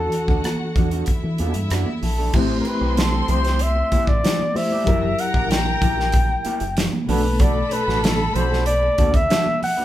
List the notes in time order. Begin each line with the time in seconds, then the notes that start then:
Already playing: E3 D4 F#4 A4 F#5
0.12 muted clean electric guitar stroke, closed hi-hat
0.28 D2 A3 D4 F#4, kick, cross-stick
0.44 muted clean electric guitar stroke, cross-stick, closed hi-hat, muted conga, high conga
0.60 muted clean electric guitar stroke
0.76 E2 A3 D4 F#4, kick, closed hi-hat, low conga
0.91 A3 D4 F#4, closed hi-hat
1.06 E4 E5, muted clean electric guitar stroke, kick, closed hi-hat, muted conga
1.23 E3, muted clean electric guitar stroke, muted conga
1.38 E2 A3 D4 F#4, closed hi-hat, high conga
1.54 G2, muted clean electric guitar stroke, closed hi-hat
1.70 F#2 A3 D4 F#4, cross-stick, closed hi-hat, muted conga
1.86 muted conga, high conga
2.02 A#1 A4, muted clean electric guitar stroke, open hi-hat, low conga
2.18 A3 D4 A4
2.33 A1 A3 C4 E4 G4 C5 C6, kick, crash, low conga
2.49 muted conga
2.60 A#4
2.65 B4, muted clean electric guitar stroke, closed hi-hat
2.81 B1 E4 G4 C5
2.97 A4, muted clean electric guitar stroke, snare, closed hi-hat, high conga
3.12 muted clean electric guitar stroke, muted conga
3.28 C2 E4 G4 C5, closed hi-hat, low conga
3.44 E4 G4 C5, snare, closed hi-hat
3.59 E5, muted clean electric guitar stroke, closed hi-hat, muted conga
3.76 muted clean electric guitar stroke, muted conga
3.92 E4 G4 C5, muted fingered electric bass stroke, kick, closed hi-hat, high conga
4.07 A1 D5, muted clean electric guitar stroke, kick
4.24 E4 G4 C5, snare, closed hi-hat, muted conga
4.39 high conga
4.54 A3 E4 G4 C5 E5, muted clean electric guitar stroke, open hi-hat, low conga
4.71 E4 G4 D5, high conga
4.84 F#1 F#3 E4 G4 A#4 A#5, kick, closed hi-hat
4.88 A#4, muted conga, low conga
5.03 muted conga
5.19 F#5, muted clean electric guitar stroke, closed hi-hat
5.34 A#1 E4 G4 A#4, kick
5.50 G5, muted clean electric guitar stroke, snare, closed hi-hat, muted conga, high conga
5.65 muted clean electric guitar stroke, muted conga
5.82 A#1 E4 G4 A#4, kick, closed hi-hat, low conga
5.98 E4 G4 A#4, snare
6.12 muted clean electric guitar stroke, kick, closed hi-hat
6.29 muted clean electric guitar stroke, muted conga
6.45 E4 G4 A#4, muted fingered electric bass stroke, closed hi-hat, high conga
6.60 F#1, muted clean electric guitar stroke, closed hi-hat
6.77 muted clean electric guitar stroke, snare, closed hi-hat, muted conga
6.93 muted clean electric guitar stroke, high conga
7.06 B1 B2 A3 D4 F#4 A4 B5, open hi-hat, low conga
7.11 B4
7.24 muted clean electric guitar stroke, high conga
7.40 D4 F#4 A4 D5, kick, closed hi-hat, muted conga, low conga
7.56 muted conga
7.71 B4, muted clean electric guitar stroke, closed hi-hat
7.87 A1 D4 F#4 A4, snare
8.03 A4, muted clean electric guitar stroke, snare, closed hi-hat, high conga
8.19 muted clean electric guitar stroke, muted conga
8.35 B1 D4 F#4 A4 C5, closed hi-hat, low conga
8.51 D4 F#4 A4, snare
8.66 D5, muted clean electric guitar stroke, closed hi-hat, muted conga
8.83 muted clean electric guitar stroke, muted conga
8.98 D2 D4 F#4 A4, kick, closed hi-hat, high conga
9.14 E5, muted clean electric guitar stroke, kick, closed hi-hat
9.30 D4 F#4 A4, snare, closed hi-hat, muted conga
9.46 muted conga, high conga
9.61 F#5, muted clean electric guitar stroke, open hi-hat, low conga
9.77 D4 F#4 B4, high conga